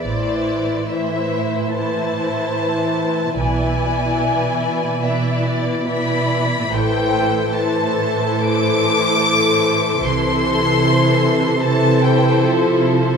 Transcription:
<<
  \new Staff \with { instrumentName = "Violin section" } { \time 4/4 \key a \minor \tempo 4 = 74 d''4 e''4 a''2 | gis''2 e''8 d''8 b''4 | g''4 a''4 d'''2 | c'''2 a''8 g''8 r4 | }
  \new Staff \with { instrumentName = "Violin section" } { \time 4/4 \key a \minor <e' c''>4 <e' c''>4 <e' c''>2 | <e' d''>2 <e' d''>4 <e' d''>4 | <a' c''>4 <a' c''>2. | <a' c''>2 <a' c''>2 | }
  \new Staff \with { instrumentName = "Viola section" } { \clef bass \time 4/4 \key a \minor << { e'4 e'4 e'2 | e'2 e'4 e'4 | e'4 e'2. | e'2 e'2 | } \\ { e4 e4 e2 | e2 e4 e4 | e4 e2. | e2 e4 f4 | } >> }
  \new Staff \with { instrumentName = "Cello section" } { \clef bass \time 4/4 \key a \minor a,1 | b,1 | a,1 | c1 | }
  \new Staff \with { instrumentName = "Double bass section" } { \clef bass \time 4/4 \key a \minor a,,4 r2. | b,,4 r2. | a,,4 r2. | c,4 r2. | }
>>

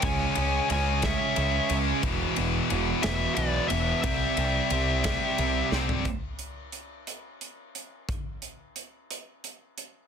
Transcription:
<<
  \new Staff \with { instrumentName = "Lead electric guitar" } { \time 6/8 \key c \lydian \tempo 4. = 59 gis''4 gis''8 e''4 r8 | r4. e''8 d''8 e''8 | e''2~ e''8 r8 | r2. |
r2. | }
  \new Staff \with { instrumentName = "Distorted electric guitar" } { \clef bass \time 6/8 \key c \lydian <cis gis cis'>8 <cis gis cis'>8 <cis gis cis'>8 <cis gis cis'>8 <cis gis cis'>8 <cis gis cis'>8 | <e, b, e>8 <e, b, e>8 <e, b, e>8 <e, b, e>8 <e, b, e>8 <e, b, e>8 | <c g c'>8 <c g c'>8 <c g c'>8 <c g c'>8 <c g c'>8 <c g c'>8 | r2. |
r2. | }
  \new Staff \with { instrumentName = "Distorted electric guitar" } { \clef bass \time 6/8 \key c \lydian <cis gis cis'>8 <cis gis cis'>8 <cis gis cis'>8 <cis gis cis'>8 <cis gis cis'>8 <cis gis cis'>8 | <e, b, e>8 <e, b, e>8 <e, b, e>8 <e, b, e>8 <e, b, e>8 <e, b, e>8 | <c g c'>8 <c g c'>8 <c g c'>8 <c g c'>8 <c g c'>8 <c g c'>8 | r2. |
r2. | }
  \new Staff \with { instrumentName = "Picked electric bass" } { \clef bass \time 6/8 \key c \lydian cis,8 cis,8 cis,4 cis,8 cis,8 | e,,8 e,,8 e,,8 e,,8 b,,8 e,,8 | c,8 c,8 c,4 c,8 c,8 | r2. |
r2. | }
  \new DrumStaff \with { instrumentName = "Drums" } \drummode { \time 6/8 <bd cymr>8 cymr8 cymr8 <bd cymr sn>8 cymr8 cymr8 | <bd cymr>8 cymr8 cymr8 <cymr sn>8 cymr8 cymr8 | <bd cymr>8 cymr8 cymr8 <bd cymr sn>8 cymr8 sn16 tomfh16 | <hh bd>8 hh8 hh8 hh8 hh8 hh8 |
<hh bd>8 hh8 hh8 hh8 hh8 hh8 | }
>>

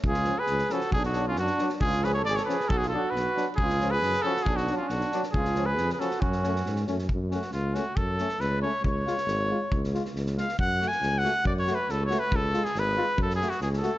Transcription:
<<
  \new Staff \with { instrumentName = "Trumpet" } { \time 2/4 \key fis \minor \tempo 4 = 137 gis'8. b'8. a'8 | gis'16 fis'8 eis'16 fis'8. r16 | gis'8 b'16 cis''16 d''16 cis''16 b'8 | a'16 gis'16 a'8 b'8. r16 |
gis'8. b'8. a'8 | gis'16 fis'8 eis'16 fis'8. r16 | gis'8. b'8~ b'32 b'32 a'8 | fis'4. r8 |
r8 fis'8 eis'8 fis'8 | a'4 b'8 cis''8 | cis''2~ | cis''8 r4 eis''8 |
\tuplet 3/2 { fis''4 gis''8~ gis''8 fis''4 } | \tuplet 3/2 { d''8 cis''8 b'8 a'8 cis''8 b'8 } | \tuplet 3/2 { a'4 gis'8 } b'4 | \tuplet 3/2 { a'8 gis'8 fis'8 gis'8 a'4 } | }
  \new Staff \with { instrumentName = "Flugelhorn" } { \time 2/4 \key fis \minor eis'8. gis'8. fis'8 | d'16 d'8 cis'16 d'8. r16 | eis'8 gis'16 a'16 gis'16 a'16 gis'8 | fis'16 eis'16 fis'8 fis'8. r16 |
eis'8. gis'8. fis'8 | d'16 d'8 cis'16 d'8. r16 | eis'8. gis'8~ gis'32 gis'32 fis'8 | cis'4. r8 |
r2 | r2 | r2 | r2 |
r2 | r2 | r2 | r2 | }
  \new Staff \with { instrumentName = "Trombone" } { \time 2/4 \key fis \minor r8 cis'8 r8 cis'8 | r8 d'8 r8 d'8 | r8 cis'8 r8 cis'8 | r8 d'8 r8 d'8 |
r8 cis'8 r8 cis'8 | r8 d'8 r8 d'8 | r8 cis'8 r8 cis'8 | r8 cis'8 r8 cis'8 |
r8 cis'8 r8 cis'8 | r8 cis'8 r8 cis'8 | r8 eis'8 r8 eis'8 | r8 eis'8 r8 eis'8 |
r8 fis'8 r8 fis'8 | r8 fis'8 r8 fis'8 | r8 eis'8 r8 eis'8 | r8 fis'8 r8 fis'8 | }
  \new Staff \with { instrumentName = "Euphonium" } { \clef bass \time 2/4 \key fis \minor r8 eis8 r8 eis8 | r8 fis8 r8 fis8 | r8 eis8 r8 eis8 | r8 fis8 r8 fis8 |
r8 eis8 r8 eis8 | r8 fis8 r8 fis8 | r8 eis8 r8 eis8 | r8 a8 r8 a8 |
r8 a8 r8 a8 | r8 a8 r8 a8 | r8 gis8 r8 gis8 | r8 gis8 r8 gis8 |
r8 a8 r8 a8 | r8 a8 r8 a8 | r8 gis8 r8 gis8 | r8 a8 r8 a8 | }
  \new Staff \with { instrumentName = "Tuba" } { \clef bass \time 2/4 \key fis \minor cis,4 cis,8 r8 | b,,4 fis,8 r8 | cis,4 gis,,8 r8 | b,,4 b,,8 r8 |
cis,4 fis,8 r8 | b,,4 b,,8 r8 | cis,4 eis,8 r8 | fis,4 gis,8 fis,8 |
fis,4 cis,4 | fis,4 cis,4 | cis,4 gis,,4 | cis,4 cis,4 |
fis,4 cis,4 | fis,4 cis,4 | cis,4 gis,,4 | fis,4 cis,4 | }
  \new DrumStaff \with { instrumentName = "Drums" } \drummode { \time 2/4 bd16 sn16 sn8 sn16 sn16 sn16 sn16 | bd16 sn16 sn8 sn16 sn16 sn16 sn16 | bd16 sn16 sn8 sn16 sn16 sn16 sn16 | bd16 sn8. sn8 sn8 |
bd16 sn16 sn8 sn16 sn8 sn16 | bd16 sn16 sn8 sn16 sn16 sn16 sn16 | bd16 sn16 sn8 sn16 sn16 sn16 sn16 | bd16 sn16 sn16 sn16 sn16 sn16 sn16 sn16 |
bd8 sn16 sn16 sn8 sn8 | bd8 sn16 sn16 sn4 | bd8 sn16 sn16 sn4 | bd16 sn16 sn16 sn16 sn16 sn16 sn16 sn16 |
bd8 sn16 sn16 sn8 sn8 | bd8 sn8 sn8 sn8 | bd8 sn16 sn16 sn4 | bd16 sn16 sn16 sn16 sn16 sn16 sn8 | }
>>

